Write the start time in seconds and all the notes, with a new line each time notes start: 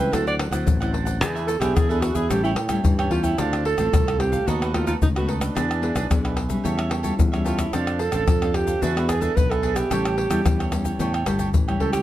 Already playing: E3 G5
0.00 B4 C5 E5
0.12 D2 D3 F#3 C4 D4 E4 A4 C5 D5 F#5, pandeiro, tamborim, shaker, surdo
0.27 C5 D5 F#5, pandeiro, shaker
0.39 pandeiro, tamborim
0.51 D2 F#3 C4 E4 C5 D5 F#5, pandeiro, tamborim, shaker, surdo
0.67 A1 A2, pandeiro, shaker, surdo
0.80 F#3 C4 E4 C5 D5 F#5, pandeiro, tamborim, shaker
0.93 D4 C5 D5 F#5, pandeiro
1.05 C5 D5 F#5, pandeiro, shaker, surdo
1.20 E2 E3 B3 D4 G#4 B4 E5, pandeiro, tamborim, shaker, surdo
1.35 G#4 B4 E5, pandeiro, shaker
1.47 A4, muted cavaquinho stroke, pandeiro, shaker
1.60 B1 B3 D4 G4 G#4 B4 E5, pandeiro, tamborim, shaker, surdo
1.75 E2 B2 D4 G#4 B4 E5, pandeiro, tamborim, shaker, surdo
1.89 B3 D4 G#4 A4 B4 E5, pandeiro, shaker
2.01 F#4, pandeiro, tamborim, shaker, surdo
2.15 E2 G#4 B4 E5, pandeiro, shaker, surdo
2.29 A1 A2 G3 C#4 E4 G4 A4 C#5 G5, pandeiro, tamborim, shaker, surdo
2.44 E4 A4 C#5 G5, pandeiro, shaker
2.56 A2, pandeiro, tamborim
2.69 G3 C#4 E4 A4 C#5 G5, pandeiro, tamborim, shaker, surdo
2.84 G2 E3, pandeiro, shaker, surdo
2.98 G3 C#4 E4 A4 C#5 G5, pandeiro, tamborim, shaker
3.10 E2 F4 G4 A4 C#5 G5, pandeiro
3.23 E4 A4 C#5 G5, pandeiro, shaker, surdo
3.38 D2 D3 A3 C4 D4 F4 A4 C5 F5, pandeiro, tamborim, shaker, surdo
3.53 pandeiro, tamborim, shaker
3.65 D4 A4 C5 F5, pandeiro
3.78 A1 A3 C4 D4 F4 A4 C5 F5, pandeiro, tamborim, shaker, surdo
3.93 C2 A2, pandeiro, tamborim, shaker, surdo
4.07 A4 C5 F5, pandeiro, tamborim, shaker
4.20 A3 C4 F4 G4, pandeiro, tamborim
4.32 A4 C5 F5, pandeiro, shaker, surdo
4.47 D#2 D#3 A3 B3 D#4 F#4 A4 B4 D#5, pandeiro, shaker, surdo
4.62 A4 B4 D#5, pandeiro, tamborim, shaker
4.73 A3 B3 D#4 F4 F#4 A4 B4 D#5, pandeiro, tamborim, surdo
4.86 D#4 F4 A4 B4 D#5, pandeiro, shaker, surdo
5.02 C#2 D#3 D#4, pandeiro, shaker, surdo
5.15 A3 B3 F#4 A4 B4 D#5, pandeiro, tamborim, shaker
5.27 D#4 A4 B4 D#5, pandeiro
5.40 D4 A4 B4 D#5, pandeiro, tamborim, shaker, surdo
5.55 E2 E3 B3 D4 G#4 B4 E5, pandeiro, tamborim, shaker, surdo
5.71 pandeiro, tamborim, shaker
5.82 B3 D4 G#4 B4 E5, pandeiro
5.95 B1 D4 G#4 B4 E5, pandeiro, tamborim, shaker, surdo
6.10 B1 B2 B3 D4 G#4, pandeiro, tamborim, shaker, surdo
6.24 G#4 B4 E5, pandeiro, tamborim, shaker
6.37 pandeiro, tamborim
6.49 G3 C#4 G#4 B4 E5, pandeiro, shaker, surdo
6.64 E2 E3 G4 A4 C#5 E5, pandeiro, shaker, surdo
6.77 A4 C#5 E5, pandeiro, tamborim, shaker
6.90 G4 A4 C#5 E5, pandeiro, tamborim
7.03 G3 C#4 F4 G4 A4 C#5 E5, pandeiro, shaker, surdo
7.19 E2, pandeiro, shaker, surdo
7.32 G3 C#4 F4 A4 C#5 E5, pandeiro, tamborim, shaker
7.44 F4 G4 A4 C#5 E5, pandeiro, shaker
7.57 E4 A4 C#5 E5, pandeiro, tamborim, shaker, surdo
7.73 F2 F3 C4 D4 A4 C5 F5, pandeiro, tamborim, shaker, surdo
7.87 pandeiro, tamborim, shaker
7.99 D4 A4 C5 F5, pandeiro
8.12 A1 C4 D4 A4 C5 F5, pandeiro, tamborim, shaker, surdo
8.28 F2 F3, pandeiro, tamborim, shaker, surdo
8.42 C4 D4 A4 C5 F5, pandeiro, tamborim, shaker
8.54 G4, pandeiro, tamborim
8.66 A4 C5 F5, pandeiro, shaker, surdo
8.82 E2 E3 B3 D4 F#4 G#4 B4 E5, pandeiro, shaker, surdo
8.96 B3 D4 G#4 B4 E5, pandeiro, tamborim, shaker
9.09 D4 G#4 B4 E5, pandeiro, tamborim, shaker, surdo
9.21 B3 D4 G#4 A4 B4 E5, pandeiro, shaker, surdo
9.36 B1 B2 B4, pandeiro, shaker, surdo
9.50 G#4 A4 B4 E5, pandeiro, tamborim, shaker
9.62 B3 D4 G#4 B4 E5, pandeiro
9.75 G4 G#4 B4 E5, pandeiro, tamborim, shaker, surdo
9.91 A1 A2 G3 C#4 E4 G4 A4 C#5 G5, pandeiro, tamborim, shaker, surdo
10.05 pandeiro, tamborim, shaker
10.17 G4 A4 C#5 G5, pandeiro
10.30 E2 G3 C#4 E4 G4 A4 C#5 G5, pandeiro, tamborim, shaker, surdo
10.45 E2 E3, pandeiro, tamborim, shaker, surdo
10.59 A4 C#5 G5, pandeiro, tamborim, shaker
10.72 G3 C#4 E4, pandeiro, tamborim, shaker
10.84 A4 C#5 G5, pandeiro, shaker, surdo
10.99 E2 A2 G4 A4 C#5 G5, pandeiro, shaker, surdo
11.13 A4 C#5 G5, pandeiro, tamborim, shaker
11.25 G1 G3 C#4 E4 G4 A4 C#5 G5, pandeiro, tamborim, shaker, surdo
11.39 G4 A4 C#5 G5, pandeiro, shaker, surdo
11.53 A1 E3, pandeiro, shaker, surdo
11.68 G3 C#4 E4 A4 C#5 G5, pandeiro, tamborim, shaker
11.80 C#2 G4 A4 C#5 G5, pandeiro
11.92 G4 A4 C#5 G5, pandeiro, tamborim, shaker, surdo